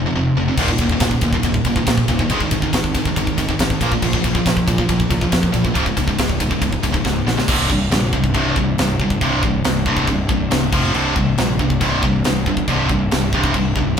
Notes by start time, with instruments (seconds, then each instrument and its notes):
0.06 distorted electric guitar F2 C3
0.15 picked electric bass F1, distorted electric guitar F2 C3
0.36 picked electric bass F1, distorted electric guitar F2 C3
0.48 distorted electric guitar F2 C3
0.57 picked electric bass D#1, distorted electric guitar D#2 A#2 D#3, kick, crash
0.68 distorted electric guitar D#2 A#2, kick
0.78 picked electric bass D#1, distorted electric guitar D#2 A#2, kick, ride
0.90 distorted electric guitar D#2 A#2, kick
1.00 picked electric bass D#1, distorted electric guitar D#2 A#2, kick, snare, ride
1.11 kick
1.21 picked electric bass D#2, distorted electric guitar D#2 A#2, kick, ride
1.33 distorted electric guitar D#2 A#2, kick
1.43 picked electric bass D#1, distorted electric guitar D#2 A#2, kick, ride
1.54 kick
1.64 picked electric bass G1, distorted electric guitar D#2 A#2, kick, ride
1.76 distorted electric guitar D#2 A#2, kick
1.87 picked electric bass A#1, distorted electric guitar D#2 A#2, kick, snare, ride
1.98 kick
2.08 picked electric bass D#1, distorted electric guitar D#2 A#2, kick, ride
2.19 distorted electric guitar D#2 A#2, kick
2.30 picked electric bass G#1, distorted electric guitar G#2 D#3 G#3, kick, ride
2.40 distorted electric guitar G#2 D#3, kick
2.51 picked electric bass G#1, distorted electric guitar G#2 D#3, kick, ride
2.62 distorted electric guitar G#2 D#3, kick
2.73 picked electric bass G#1, distorted electric guitar G#2 D#3, kick, snare, ride
2.84 kick
2.95 distorted electric guitar G#2 D#3, kick, ride
3.05 distorted electric guitar G#2 D#3, kick
3.16 picked electric bass G#1, distorted electric guitar G#2 D#3, kick, ride
3.27 kick
3.38 picked electric bass G#1, distorted electric guitar G#2 D#3, kick, ride
3.49 distorted electric guitar G#2 D#3, kick
3.59 picked electric bass G#1, distorted electric guitar G#2 D#3, kick, snare, ride
3.70 kick
3.81 picked electric bass A#1, distorted electric guitar A#2 F3 A#3, kick, ride
3.92 distorted electric guitar A#2 F3, kick
4.02 picked electric bass A#1, distorted electric guitar A#2 F3, kick, crash
4.13 distorted electric guitar A#2 F3, kick
4.24 picked electric bass A#1, distorted electric guitar A#2 F3, kick, ride
4.35 distorted electric guitar A#2 F3, kick
4.46 picked electric bass A#1, distorted electric guitar A#2 F3, kick, snare, ride
4.57 kick
4.68 picked electric bass A#2, distorted electric guitar A#2 F3, kick, ride
4.78 distorted electric guitar A#2 F3, kick
4.89 picked electric bass A#1, distorted electric guitar A#2 F3, kick, ride
5.00 kick
5.10 picked electric bass C#2, distorted electric guitar A#2 F3, kick, ride
5.21 distorted electric guitar A#2 F3, kick
5.32 picked electric bass F2, distorted electric guitar A#2 F3, kick, snare, ride
5.43 kick
5.52 picked electric bass A#1, distorted electric guitar A#2 F3, kick, ride
5.64 distorted electric guitar A#2 F3, kick
5.74 picked electric bass C#1, distorted electric guitar C#2 G#2 C#3, kick, ride
5.86 distorted electric guitar C#2 G#2, kick
5.97 picked electric bass C#1, distorted electric guitar C#2 G#2, kick, ride
6.08 distorted electric guitar C#2 G#2, kick
6.19 picked electric bass C#1, distorted electric guitar C#2 G#2, kick, snare, ride
6.29 kick
6.40 distorted electric guitar C#2 G#2, kick, ride
6.51 distorted electric guitar C#2 G#2, kick
6.61 picked electric bass C#1, distorted electric guitar C#2 G#2, kick, ride
6.73 kick
6.83 picked electric bass C#1, distorted electric guitar C#2 G#2, kick, ride
6.94 distorted electric guitar C#2 G#2, kick
7.05 picked electric bass C#1, distorted electric guitar C#2 G#2, kick, snare
7.26 picked electric bass A#1, distorted electric guitar C#2 G#2, snare
7.38 distorted electric guitar C#2 G#2, snare
7.48 picked electric bass C1, distorted electric guitar C2 G2 C3, kick, crash
7.70 picked electric bass C1, distorted electric guitar C2 G2, kick
7.91 picked electric bass A#1, distorted electric guitar C2 G2, snare, crash
8.13 picked electric bass C1, distorted electric guitar C2 G2, kick
8.24 kick
8.34 picked electric bass C1, distorted electric guitar C2 G2 C3, kick, crash
8.56 picked electric bass C1, distorted electric guitar C2 G2, kick
8.77 picked electric bass C1, distorted electric guitar C2 G2, snare, crash
8.99 picked electric bass G1, distorted electric guitar C2 G2, kick
9.10 kick
9.21 picked electric bass C1, distorted electric guitar C2 G2 C3, kick, crash
9.43 picked electric bass C1, distorted electric guitar C2 G2, kick
9.64 picked electric bass C1, distorted electric guitar C2 G2, snare, crash
9.86 picked electric bass C1, distorted electric guitar C2 G2 C3, kick
9.97 kick
10.07 picked electric bass C1, distorted electric guitar C2 G2, kick, crash
10.29 picked electric bass C1, distorted electric guitar C2 G2, kick
10.50 picked electric bass C1, distorted electric guitar C2 G2, snare, crash
10.72 picked electric bass F1, distorted electric guitar F2 C3 F3, kick, crash
10.93 picked electric bass C1, distorted electric guitar C2 G2 C3, crash
11.16 picked electric bass C1, distorted electric guitar C2 G2, kick
11.37 picked electric bass A#1, distorted electric guitar C2 G2, snare, crash
11.59 picked electric bass C1, distorted electric guitar C2 G2, kick
11.70 kick
11.81 picked electric bass C1, distorted electric guitar C2 G2 C3, kick, crash
12.03 picked electric bass C1, distorted electric guitar C2 G2, kick
12.24 picked electric bass C1, distorted electric guitar C2 G2, snare, crash
12.46 picked electric bass G1, distorted electric guitar C2 G2, kick
12.57 kick
12.68 picked electric bass C1, distorted electric guitar C2 G2 C3, kick, crash
12.89 picked electric bass C1, distorted electric guitar C2 G2, kick
13.11 picked electric bass C1, distorted electric guitar C2 G2, snare, crash
13.33 picked electric bass C1, distorted electric guitar C2 G2 C3, kick
13.44 kick
13.54 picked electric bass C1, distorted electric guitar C2 G2, kick, crash
13.76 picked electric bass C#1, distorted electric guitar C2 G2, kick
13.96 picked electric bass D#1